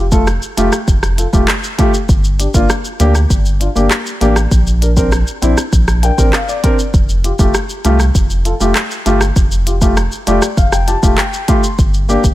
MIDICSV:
0, 0, Header, 1, 4, 480
1, 0, Start_track
1, 0, Key_signature, -1, "major"
1, 0, Tempo, 606061
1, 1656, Time_signature, 4, 2, 24, 8
1, 9773, End_track
2, 0, Start_track
2, 0, Title_t, "Grand piano"
2, 0, Program_c, 0, 0
2, 93, Note_on_c, 0, 57, 77
2, 96, Note_on_c, 0, 65, 74
2, 99, Note_on_c, 0, 69, 86
2, 190, Note_off_c, 0, 57, 0
2, 192, Note_off_c, 0, 65, 0
2, 193, Note_off_c, 0, 69, 0
2, 453, Note_on_c, 0, 57, 87
2, 456, Note_on_c, 0, 65, 80
2, 459, Note_on_c, 0, 67, 93
2, 550, Note_off_c, 0, 57, 0
2, 552, Note_off_c, 0, 65, 0
2, 554, Note_off_c, 0, 67, 0
2, 932, Note_on_c, 0, 65, 53
2, 938, Note_on_c, 0, 69, 58
2, 982, Note_off_c, 0, 65, 0
2, 985, Note_off_c, 0, 69, 0
2, 1052, Note_on_c, 0, 57, 81
2, 1055, Note_on_c, 0, 65, 70
2, 1059, Note_on_c, 0, 67, 88
2, 1150, Note_off_c, 0, 57, 0
2, 1152, Note_off_c, 0, 65, 0
2, 1153, Note_off_c, 0, 67, 0
2, 1412, Note_on_c, 0, 57, 90
2, 1415, Note_on_c, 0, 65, 79
2, 1419, Note_on_c, 0, 67, 96
2, 1510, Note_off_c, 0, 57, 0
2, 1512, Note_off_c, 0, 65, 0
2, 1514, Note_off_c, 0, 67, 0
2, 1894, Note_on_c, 0, 62, 54
2, 1900, Note_on_c, 0, 67, 58
2, 1943, Note_off_c, 0, 62, 0
2, 1946, Note_off_c, 0, 67, 0
2, 2013, Note_on_c, 0, 58, 82
2, 2016, Note_on_c, 0, 62, 73
2, 2019, Note_on_c, 0, 65, 86
2, 2110, Note_off_c, 0, 58, 0
2, 2112, Note_off_c, 0, 62, 0
2, 2114, Note_off_c, 0, 65, 0
2, 2373, Note_on_c, 0, 58, 83
2, 2377, Note_on_c, 0, 62, 78
2, 2380, Note_on_c, 0, 67, 98
2, 2470, Note_off_c, 0, 58, 0
2, 2472, Note_off_c, 0, 62, 0
2, 2474, Note_off_c, 0, 67, 0
2, 2853, Note_on_c, 0, 62, 53
2, 2859, Note_on_c, 0, 65, 61
2, 2902, Note_off_c, 0, 62, 0
2, 2906, Note_off_c, 0, 65, 0
2, 2973, Note_on_c, 0, 58, 77
2, 2976, Note_on_c, 0, 62, 75
2, 2980, Note_on_c, 0, 67, 87
2, 3070, Note_off_c, 0, 58, 0
2, 3072, Note_off_c, 0, 62, 0
2, 3074, Note_off_c, 0, 67, 0
2, 3333, Note_on_c, 0, 58, 89
2, 3336, Note_on_c, 0, 62, 81
2, 3339, Note_on_c, 0, 67, 97
2, 3430, Note_off_c, 0, 58, 0
2, 3432, Note_off_c, 0, 62, 0
2, 3433, Note_off_c, 0, 67, 0
2, 3813, Note_on_c, 0, 62, 54
2, 3820, Note_on_c, 0, 70, 61
2, 3862, Note_off_c, 0, 62, 0
2, 3866, Note_off_c, 0, 70, 0
2, 3933, Note_on_c, 0, 60, 80
2, 3936, Note_on_c, 0, 62, 74
2, 3939, Note_on_c, 0, 70, 84
2, 4030, Note_off_c, 0, 60, 0
2, 4032, Note_off_c, 0, 62, 0
2, 4034, Note_off_c, 0, 70, 0
2, 4291, Note_on_c, 0, 60, 82
2, 4295, Note_on_c, 0, 62, 74
2, 4299, Note_on_c, 0, 64, 93
2, 4389, Note_off_c, 0, 60, 0
2, 4392, Note_off_c, 0, 62, 0
2, 4393, Note_off_c, 0, 64, 0
2, 4773, Note_on_c, 0, 62, 55
2, 4776, Note_on_c, 0, 79, 78
2, 4780, Note_on_c, 0, 70, 58
2, 4822, Note_off_c, 0, 62, 0
2, 4826, Note_off_c, 0, 70, 0
2, 4892, Note_on_c, 0, 60, 79
2, 4896, Note_on_c, 0, 62, 70
2, 4899, Note_on_c, 0, 70, 86
2, 4990, Note_off_c, 0, 60, 0
2, 4992, Note_off_c, 0, 62, 0
2, 4993, Note_off_c, 0, 70, 0
2, 4999, Note_off_c, 0, 79, 0
2, 5017, Note_on_c, 0, 77, 75
2, 5128, Note_off_c, 0, 77, 0
2, 5138, Note_on_c, 0, 74, 74
2, 5254, Note_on_c, 0, 60, 86
2, 5258, Note_on_c, 0, 62, 76
2, 5261, Note_on_c, 0, 70, 94
2, 5351, Note_off_c, 0, 60, 0
2, 5353, Note_off_c, 0, 62, 0
2, 5355, Note_off_c, 0, 70, 0
2, 5472, Note_off_c, 0, 74, 0
2, 5734, Note_on_c, 0, 65, 55
2, 5741, Note_on_c, 0, 67, 62
2, 5783, Note_off_c, 0, 65, 0
2, 5786, Note_off_c, 0, 67, 0
2, 5854, Note_on_c, 0, 57, 82
2, 5856, Note_on_c, 0, 65, 73
2, 5860, Note_on_c, 0, 67, 90
2, 5951, Note_off_c, 0, 57, 0
2, 5952, Note_off_c, 0, 65, 0
2, 5954, Note_off_c, 0, 67, 0
2, 6214, Note_on_c, 0, 57, 85
2, 6217, Note_on_c, 0, 65, 79
2, 6220, Note_on_c, 0, 67, 92
2, 6311, Note_off_c, 0, 57, 0
2, 6312, Note_off_c, 0, 65, 0
2, 6314, Note_off_c, 0, 67, 0
2, 6692, Note_on_c, 0, 65, 55
2, 6699, Note_on_c, 0, 69, 60
2, 6742, Note_off_c, 0, 65, 0
2, 6745, Note_off_c, 0, 69, 0
2, 6813, Note_on_c, 0, 57, 80
2, 6817, Note_on_c, 0, 65, 70
2, 6820, Note_on_c, 0, 67, 86
2, 6911, Note_off_c, 0, 57, 0
2, 6912, Note_off_c, 0, 65, 0
2, 6914, Note_off_c, 0, 67, 0
2, 7173, Note_on_c, 0, 57, 83
2, 7176, Note_on_c, 0, 65, 81
2, 7180, Note_on_c, 0, 67, 95
2, 7270, Note_off_c, 0, 57, 0
2, 7272, Note_off_c, 0, 65, 0
2, 7274, Note_off_c, 0, 67, 0
2, 7653, Note_on_c, 0, 65, 55
2, 7660, Note_on_c, 0, 67, 59
2, 7702, Note_off_c, 0, 65, 0
2, 7706, Note_off_c, 0, 67, 0
2, 7773, Note_on_c, 0, 57, 80
2, 7776, Note_on_c, 0, 65, 76
2, 7780, Note_on_c, 0, 67, 89
2, 7870, Note_off_c, 0, 57, 0
2, 7872, Note_off_c, 0, 65, 0
2, 7874, Note_off_c, 0, 67, 0
2, 8132, Note_on_c, 0, 57, 88
2, 8136, Note_on_c, 0, 65, 76
2, 8136, Note_on_c, 0, 74, 70
2, 8140, Note_on_c, 0, 67, 93
2, 8230, Note_off_c, 0, 57, 0
2, 8232, Note_off_c, 0, 65, 0
2, 8234, Note_off_c, 0, 67, 0
2, 8359, Note_off_c, 0, 74, 0
2, 8375, Note_on_c, 0, 77, 80
2, 8487, Note_off_c, 0, 77, 0
2, 8494, Note_on_c, 0, 79, 73
2, 8606, Note_off_c, 0, 79, 0
2, 8610, Note_on_c, 0, 65, 53
2, 8614, Note_on_c, 0, 81, 76
2, 8618, Note_on_c, 0, 67, 60
2, 8661, Note_off_c, 0, 65, 0
2, 8665, Note_off_c, 0, 67, 0
2, 8731, Note_on_c, 0, 57, 79
2, 8733, Note_on_c, 0, 65, 72
2, 8738, Note_on_c, 0, 67, 86
2, 8829, Note_off_c, 0, 57, 0
2, 8831, Note_off_c, 0, 65, 0
2, 8833, Note_off_c, 0, 67, 0
2, 8838, Note_off_c, 0, 81, 0
2, 8855, Note_on_c, 0, 79, 72
2, 9078, Note_off_c, 0, 79, 0
2, 9092, Note_on_c, 0, 57, 85
2, 9095, Note_on_c, 0, 65, 80
2, 9095, Note_on_c, 0, 84, 72
2, 9099, Note_on_c, 0, 67, 97
2, 9190, Note_off_c, 0, 57, 0
2, 9191, Note_off_c, 0, 65, 0
2, 9193, Note_off_c, 0, 67, 0
2, 9319, Note_off_c, 0, 84, 0
2, 9572, Note_on_c, 0, 58, 84
2, 9575, Note_on_c, 0, 62, 77
2, 9579, Note_on_c, 0, 67, 96
2, 9670, Note_off_c, 0, 58, 0
2, 9672, Note_off_c, 0, 62, 0
2, 9673, Note_off_c, 0, 67, 0
2, 9773, End_track
3, 0, Start_track
3, 0, Title_t, "Sub bass"
3, 0, Program_c, 1, 38
3, 0, Note_on_c, 1, 29, 115
3, 305, Note_off_c, 1, 29, 0
3, 456, Note_on_c, 1, 29, 93
3, 556, Note_off_c, 1, 29, 0
3, 694, Note_on_c, 1, 29, 108
3, 997, Note_off_c, 1, 29, 0
3, 1056, Note_on_c, 1, 28, 99
3, 1156, Note_off_c, 1, 28, 0
3, 1655, Note_on_c, 1, 31, 101
3, 1957, Note_off_c, 1, 31, 0
3, 2015, Note_on_c, 1, 31, 96
3, 2116, Note_off_c, 1, 31, 0
3, 2374, Note_on_c, 1, 38, 90
3, 2576, Note_off_c, 1, 38, 0
3, 2616, Note_on_c, 1, 31, 116
3, 2918, Note_off_c, 1, 31, 0
3, 2976, Note_on_c, 1, 31, 96
3, 3076, Note_off_c, 1, 31, 0
3, 3336, Note_on_c, 1, 33, 100
3, 3537, Note_off_c, 1, 33, 0
3, 3576, Note_on_c, 1, 34, 108
3, 4146, Note_off_c, 1, 34, 0
3, 4295, Note_on_c, 1, 34, 101
3, 4396, Note_off_c, 1, 34, 0
3, 4535, Note_on_c, 1, 34, 96
3, 4837, Note_off_c, 1, 34, 0
3, 4896, Note_on_c, 1, 33, 88
3, 4997, Note_off_c, 1, 33, 0
3, 5495, Note_on_c, 1, 29, 111
3, 5797, Note_off_c, 1, 29, 0
3, 5855, Note_on_c, 1, 29, 102
3, 5956, Note_off_c, 1, 29, 0
3, 6215, Note_on_c, 1, 36, 87
3, 6417, Note_off_c, 1, 36, 0
3, 6454, Note_on_c, 1, 29, 103
3, 6757, Note_off_c, 1, 29, 0
3, 6815, Note_on_c, 1, 29, 96
3, 6916, Note_off_c, 1, 29, 0
3, 7176, Note_on_c, 1, 31, 96
3, 7377, Note_off_c, 1, 31, 0
3, 7415, Note_on_c, 1, 29, 118
3, 7985, Note_off_c, 1, 29, 0
3, 8136, Note_on_c, 1, 29, 92
3, 8236, Note_off_c, 1, 29, 0
3, 8375, Note_on_c, 1, 29, 106
3, 8677, Note_off_c, 1, 29, 0
3, 8736, Note_on_c, 1, 28, 101
3, 8836, Note_off_c, 1, 28, 0
3, 9335, Note_on_c, 1, 31, 104
3, 9637, Note_off_c, 1, 31, 0
3, 9695, Note_on_c, 1, 31, 95
3, 9773, Note_off_c, 1, 31, 0
3, 9773, End_track
4, 0, Start_track
4, 0, Title_t, "Drums"
4, 92, Note_on_c, 9, 82, 78
4, 94, Note_on_c, 9, 36, 93
4, 172, Note_off_c, 9, 82, 0
4, 174, Note_off_c, 9, 36, 0
4, 214, Note_on_c, 9, 82, 76
4, 216, Note_on_c, 9, 37, 105
4, 293, Note_off_c, 9, 82, 0
4, 296, Note_off_c, 9, 37, 0
4, 335, Note_on_c, 9, 82, 59
4, 414, Note_off_c, 9, 82, 0
4, 456, Note_on_c, 9, 42, 82
4, 456, Note_on_c, 9, 82, 61
4, 535, Note_off_c, 9, 42, 0
4, 535, Note_off_c, 9, 82, 0
4, 573, Note_on_c, 9, 82, 76
4, 574, Note_on_c, 9, 37, 93
4, 652, Note_off_c, 9, 82, 0
4, 653, Note_off_c, 9, 37, 0
4, 695, Note_on_c, 9, 36, 96
4, 695, Note_on_c, 9, 82, 72
4, 774, Note_off_c, 9, 36, 0
4, 774, Note_off_c, 9, 82, 0
4, 814, Note_on_c, 9, 37, 89
4, 815, Note_on_c, 9, 82, 55
4, 894, Note_off_c, 9, 37, 0
4, 894, Note_off_c, 9, 82, 0
4, 937, Note_on_c, 9, 42, 64
4, 937, Note_on_c, 9, 82, 47
4, 1016, Note_off_c, 9, 42, 0
4, 1016, Note_off_c, 9, 82, 0
4, 1056, Note_on_c, 9, 36, 88
4, 1056, Note_on_c, 9, 82, 66
4, 1135, Note_off_c, 9, 36, 0
4, 1136, Note_off_c, 9, 82, 0
4, 1174, Note_on_c, 9, 37, 103
4, 1174, Note_on_c, 9, 39, 105
4, 1177, Note_on_c, 9, 82, 83
4, 1253, Note_off_c, 9, 37, 0
4, 1253, Note_off_c, 9, 39, 0
4, 1256, Note_off_c, 9, 82, 0
4, 1296, Note_on_c, 9, 82, 56
4, 1375, Note_off_c, 9, 82, 0
4, 1415, Note_on_c, 9, 42, 71
4, 1415, Note_on_c, 9, 82, 49
4, 1417, Note_on_c, 9, 36, 87
4, 1494, Note_off_c, 9, 42, 0
4, 1494, Note_off_c, 9, 82, 0
4, 1497, Note_off_c, 9, 36, 0
4, 1536, Note_on_c, 9, 82, 69
4, 1615, Note_off_c, 9, 82, 0
4, 1655, Note_on_c, 9, 36, 115
4, 1655, Note_on_c, 9, 82, 73
4, 1734, Note_off_c, 9, 36, 0
4, 1734, Note_off_c, 9, 82, 0
4, 1776, Note_on_c, 9, 82, 54
4, 1855, Note_off_c, 9, 82, 0
4, 1898, Note_on_c, 9, 42, 76
4, 1898, Note_on_c, 9, 82, 55
4, 1977, Note_off_c, 9, 42, 0
4, 1977, Note_off_c, 9, 82, 0
4, 2013, Note_on_c, 9, 82, 81
4, 2015, Note_on_c, 9, 36, 88
4, 2092, Note_off_c, 9, 82, 0
4, 2094, Note_off_c, 9, 36, 0
4, 2134, Note_on_c, 9, 82, 72
4, 2137, Note_on_c, 9, 37, 107
4, 2213, Note_off_c, 9, 82, 0
4, 2216, Note_off_c, 9, 37, 0
4, 2255, Note_on_c, 9, 82, 61
4, 2334, Note_off_c, 9, 82, 0
4, 2375, Note_on_c, 9, 42, 83
4, 2375, Note_on_c, 9, 82, 58
4, 2455, Note_off_c, 9, 42, 0
4, 2455, Note_off_c, 9, 82, 0
4, 2494, Note_on_c, 9, 82, 80
4, 2495, Note_on_c, 9, 37, 93
4, 2573, Note_off_c, 9, 82, 0
4, 2574, Note_off_c, 9, 37, 0
4, 2616, Note_on_c, 9, 36, 95
4, 2617, Note_on_c, 9, 82, 76
4, 2695, Note_off_c, 9, 36, 0
4, 2696, Note_off_c, 9, 82, 0
4, 2736, Note_on_c, 9, 82, 59
4, 2816, Note_off_c, 9, 82, 0
4, 2858, Note_on_c, 9, 42, 61
4, 2858, Note_on_c, 9, 82, 46
4, 2937, Note_off_c, 9, 42, 0
4, 2937, Note_off_c, 9, 82, 0
4, 2978, Note_on_c, 9, 82, 68
4, 3057, Note_off_c, 9, 82, 0
4, 3094, Note_on_c, 9, 37, 104
4, 3094, Note_on_c, 9, 39, 102
4, 3097, Note_on_c, 9, 82, 85
4, 3173, Note_off_c, 9, 37, 0
4, 3173, Note_off_c, 9, 39, 0
4, 3176, Note_off_c, 9, 82, 0
4, 3218, Note_on_c, 9, 82, 60
4, 3297, Note_off_c, 9, 82, 0
4, 3337, Note_on_c, 9, 42, 67
4, 3337, Note_on_c, 9, 82, 52
4, 3416, Note_off_c, 9, 42, 0
4, 3416, Note_off_c, 9, 82, 0
4, 3454, Note_on_c, 9, 37, 110
4, 3456, Note_on_c, 9, 82, 68
4, 3533, Note_off_c, 9, 37, 0
4, 3535, Note_off_c, 9, 82, 0
4, 3576, Note_on_c, 9, 36, 116
4, 3576, Note_on_c, 9, 82, 70
4, 3655, Note_off_c, 9, 36, 0
4, 3655, Note_off_c, 9, 82, 0
4, 3697, Note_on_c, 9, 82, 55
4, 3776, Note_off_c, 9, 82, 0
4, 3819, Note_on_c, 9, 42, 72
4, 3819, Note_on_c, 9, 82, 54
4, 3898, Note_off_c, 9, 42, 0
4, 3898, Note_off_c, 9, 82, 0
4, 3935, Note_on_c, 9, 36, 88
4, 3935, Note_on_c, 9, 82, 77
4, 4014, Note_off_c, 9, 36, 0
4, 4014, Note_off_c, 9, 82, 0
4, 4055, Note_on_c, 9, 82, 73
4, 4058, Note_on_c, 9, 37, 106
4, 4134, Note_off_c, 9, 82, 0
4, 4137, Note_off_c, 9, 37, 0
4, 4176, Note_on_c, 9, 82, 62
4, 4255, Note_off_c, 9, 82, 0
4, 4297, Note_on_c, 9, 42, 85
4, 4297, Note_on_c, 9, 82, 59
4, 4376, Note_off_c, 9, 42, 0
4, 4376, Note_off_c, 9, 82, 0
4, 4414, Note_on_c, 9, 82, 79
4, 4416, Note_on_c, 9, 37, 93
4, 4493, Note_off_c, 9, 82, 0
4, 4495, Note_off_c, 9, 37, 0
4, 4535, Note_on_c, 9, 36, 98
4, 4536, Note_on_c, 9, 82, 75
4, 4615, Note_off_c, 9, 36, 0
4, 4615, Note_off_c, 9, 82, 0
4, 4656, Note_on_c, 9, 37, 91
4, 4657, Note_on_c, 9, 82, 58
4, 4735, Note_off_c, 9, 37, 0
4, 4736, Note_off_c, 9, 82, 0
4, 4777, Note_on_c, 9, 42, 64
4, 4777, Note_on_c, 9, 82, 47
4, 4856, Note_off_c, 9, 42, 0
4, 4856, Note_off_c, 9, 82, 0
4, 4896, Note_on_c, 9, 36, 88
4, 4897, Note_on_c, 9, 82, 69
4, 4976, Note_off_c, 9, 36, 0
4, 4977, Note_off_c, 9, 82, 0
4, 5015, Note_on_c, 9, 37, 108
4, 5015, Note_on_c, 9, 39, 104
4, 5018, Note_on_c, 9, 82, 81
4, 5094, Note_off_c, 9, 37, 0
4, 5094, Note_off_c, 9, 39, 0
4, 5097, Note_off_c, 9, 82, 0
4, 5137, Note_on_c, 9, 82, 58
4, 5217, Note_off_c, 9, 82, 0
4, 5257, Note_on_c, 9, 42, 73
4, 5257, Note_on_c, 9, 82, 52
4, 5258, Note_on_c, 9, 36, 87
4, 5336, Note_off_c, 9, 42, 0
4, 5336, Note_off_c, 9, 82, 0
4, 5337, Note_off_c, 9, 36, 0
4, 5377, Note_on_c, 9, 82, 67
4, 5456, Note_off_c, 9, 82, 0
4, 5495, Note_on_c, 9, 36, 113
4, 5495, Note_on_c, 9, 82, 69
4, 5574, Note_off_c, 9, 36, 0
4, 5574, Note_off_c, 9, 82, 0
4, 5616, Note_on_c, 9, 82, 55
4, 5695, Note_off_c, 9, 82, 0
4, 5737, Note_on_c, 9, 42, 72
4, 5737, Note_on_c, 9, 82, 53
4, 5817, Note_off_c, 9, 42, 0
4, 5817, Note_off_c, 9, 82, 0
4, 5852, Note_on_c, 9, 82, 81
4, 5854, Note_on_c, 9, 36, 89
4, 5932, Note_off_c, 9, 82, 0
4, 5934, Note_off_c, 9, 36, 0
4, 5973, Note_on_c, 9, 82, 74
4, 5976, Note_on_c, 9, 37, 104
4, 6053, Note_off_c, 9, 82, 0
4, 6055, Note_off_c, 9, 37, 0
4, 6093, Note_on_c, 9, 82, 61
4, 6172, Note_off_c, 9, 82, 0
4, 6215, Note_on_c, 9, 42, 82
4, 6215, Note_on_c, 9, 82, 58
4, 6294, Note_off_c, 9, 42, 0
4, 6294, Note_off_c, 9, 82, 0
4, 6333, Note_on_c, 9, 82, 78
4, 6334, Note_on_c, 9, 37, 94
4, 6412, Note_off_c, 9, 82, 0
4, 6413, Note_off_c, 9, 37, 0
4, 6454, Note_on_c, 9, 82, 75
4, 6455, Note_on_c, 9, 36, 94
4, 6533, Note_off_c, 9, 82, 0
4, 6534, Note_off_c, 9, 36, 0
4, 6574, Note_on_c, 9, 82, 56
4, 6653, Note_off_c, 9, 82, 0
4, 6695, Note_on_c, 9, 42, 64
4, 6695, Note_on_c, 9, 82, 46
4, 6774, Note_off_c, 9, 42, 0
4, 6774, Note_off_c, 9, 82, 0
4, 6816, Note_on_c, 9, 82, 67
4, 6895, Note_off_c, 9, 82, 0
4, 6933, Note_on_c, 9, 37, 101
4, 6933, Note_on_c, 9, 39, 104
4, 6936, Note_on_c, 9, 82, 83
4, 7013, Note_off_c, 9, 37, 0
4, 7013, Note_off_c, 9, 39, 0
4, 7016, Note_off_c, 9, 82, 0
4, 7058, Note_on_c, 9, 82, 55
4, 7137, Note_off_c, 9, 82, 0
4, 7176, Note_on_c, 9, 42, 73
4, 7176, Note_on_c, 9, 82, 51
4, 7255, Note_off_c, 9, 42, 0
4, 7255, Note_off_c, 9, 82, 0
4, 7292, Note_on_c, 9, 37, 105
4, 7295, Note_on_c, 9, 82, 70
4, 7372, Note_off_c, 9, 37, 0
4, 7374, Note_off_c, 9, 82, 0
4, 7414, Note_on_c, 9, 82, 73
4, 7415, Note_on_c, 9, 36, 114
4, 7493, Note_off_c, 9, 82, 0
4, 7494, Note_off_c, 9, 36, 0
4, 7536, Note_on_c, 9, 82, 54
4, 7615, Note_off_c, 9, 82, 0
4, 7657, Note_on_c, 9, 42, 77
4, 7657, Note_on_c, 9, 82, 53
4, 7736, Note_off_c, 9, 42, 0
4, 7736, Note_off_c, 9, 82, 0
4, 7772, Note_on_c, 9, 82, 80
4, 7774, Note_on_c, 9, 36, 90
4, 7852, Note_off_c, 9, 82, 0
4, 7854, Note_off_c, 9, 36, 0
4, 7894, Note_on_c, 9, 82, 76
4, 7897, Note_on_c, 9, 37, 104
4, 7973, Note_off_c, 9, 82, 0
4, 7976, Note_off_c, 9, 37, 0
4, 8014, Note_on_c, 9, 82, 60
4, 8093, Note_off_c, 9, 82, 0
4, 8135, Note_on_c, 9, 42, 85
4, 8135, Note_on_c, 9, 82, 58
4, 8214, Note_off_c, 9, 42, 0
4, 8214, Note_off_c, 9, 82, 0
4, 8253, Note_on_c, 9, 82, 81
4, 8254, Note_on_c, 9, 37, 95
4, 8332, Note_off_c, 9, 82, 0
4, 8333, Note_off_c, 9, 37, 0
4, 8374, Note_on_c, 9, 82, 74
4, 8375, Note_on_c, 9, 36, 97
4, 8453, Note_off_c, 9, 82, 0
4, 8454, Note_off_c, 9, 36, 0
4, 8494, Note_on_c, 9, 37, 95
4, 8494, Note_on_c, 9, 82, 59
4, 8573, Note_off_c, 9, 37, 0
4, 8574, Note_off_c, 9, 82, 0
4, 8615, Note_on_c, 9, 42, 64
4, 8615, Note_on_c, 9, 82, 45
4, 8694, Note_off_c, 9, 42, 0
4, 8694, Note_off_c, 9, 82, 0
4, 8736, Note_on_c, 9, 36, 89
4, 8736, Note_on_c, 9, 82, 67
4, 8815, Note_off_c, 9, 36, 0
4, 8815, Note_off_c, 9, 82, 0
4, 8853, Note_on_c, 9, 37, 105
4, 8853, Note_on_c, 9, 39, 108
4, 8856, Note_on_c, 9, 82, 81
4, 8932, Note_off_c, 9, 37, 0
4, 8932, Note_off_c, 9, 39, 0
4, 8935, Note_off_c, 9, 82, 0
4, 8976, Note_on_c, 9, 82, 60
4, 9055, Note_off_c, 9, 82, 0
4, 9094, Note_on_c, 9, 42, 73
4, 9094, Note_on_c, 9, 82, 51
4, 9097, Note_on_c, 9, 36, 92
4, 9173, Note_off_c, 9, 42, 0
4, 9173, Note_off_c, 9, 82, 0
4, 9176, Note_off_c, 9, 36, 0
4, 9215, Note_on_c, 9, 82, 71
4, 9294, Note_off_c, 9, 82, 0
4, 9334, Note_on_c, 9, 82, 69
4, 9335, Note_on_c, 9, 36, 119
4, 9413, Note_off_c, 9, 82, 0
4, 9414, Note_off_c, 9, 36, 0
4, 9455, Note_on_c, 9, 82, 52
4, 9534, Note_off_c, 9, 82, 0
4, 9576, Note_on_c, 9, 82, 51
4, 9655, Note_off_c, 9, 82, 0
4, 9693, Note_on_c, 9, 82, 76
4, 9695, Note_on_c, 9, 36, 88
4, 9772, Note_off_c, 9, 82, 0
4, 9773, Note_off_c, 9, 36, 0
4, 9773, End_track
0, 0, End_of_file